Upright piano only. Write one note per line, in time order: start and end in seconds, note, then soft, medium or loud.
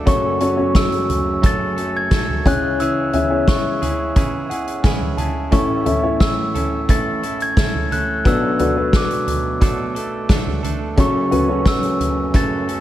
0.06 2.41 F#1 medium
0.06 2.41 F#2 medium
0.06 0.37 C#4 medium
0.06 0.37 F#4 medium
0.06 0.37 A4 medium
0.06 0.38 C#5 medium
0.41 0.56 C#4 medium
0.41 0.56 F#4 medium
0.41 0.56 A4 medium
0.41 0.56 C#5 medium
0.57 1.81 C#4 medium
0.57 1.81 F#4 medium
0.57 1.81 A4 medium
0.57 1.81 C#5 medium
2.46 5.14 C#2 medium
2.46 5.15 C#3 medium
2.46 3.07 C#4 medium
2.46 3.07 E4 medium
2.46 3.07 G#4 medium
2.46 3.08 C#5 medium
3.13 3.29 C#4 medium
3.13 3.29 E4 medium
3.13 3.29 G#4 medium
3.13 3.29 E5 medium
3.30 4.53 C#4 medium
3.30 4.54 E4 medium
3.30 4.53 G#4 medium
3.30 4.54 C#5 medium
4.49 4.81 F#5 medium
4.83 5.15 G#5 medium
5.17 5.49 A5 medium
5.52 8.21 A1 medium
5.52 8.21 A2 medium
5.52 5.83 C#4 medium
5.52 5.83 E4 medium
5.52 5.83 A4 medium
5.52 5.83 C#5 medium
5.85 6.01 C#4 medium
5.85 6.01 E4 medium
5.85 6.01 A4 medium
5.85 6.02 E5 medium
6.03 7.26 C#4 medium
6.03 7.26 E4 medium
6.03 7.26 A4 medium
6.03 7.26 C#5 medium
8.25 10.94 B1 medium
8.25 10.94 B2 medium
8.25 8.56 D4 medium
8.25 8.56 F#4 medium
8.25 8.56 A4 medium
8.25 8.56 B4 medium
8.59 8.75 D4 medium
8.59 8.75 F#4 medium
8.59 8.75 A4 medium
8.59 8.75 B4 medium
8.76 9.99 D4 medium
8.76 9.99 F#4 medium
8.76 9.99 A4 medium
8.76 9.99 B4 medium
10.97 12.80 F#1 medium
10.97 12.80 F#2 medium
10.97 11.28 C#4 medium
10.97 11.29 F#4 medium
10.97 11.28 A4 medium
10.97 11.29 C#5 medium
11.31 11.47 C#4 medium
11.31 11.47 F#4 medium
11.31 11.47 A4 medium
11.31 11.47 B4 medium
11.48 12.72 C#4 medium
11.48 12.72 F#4 medium
11.48 12.72 A4 medium
11.48 12.72 C#5 medium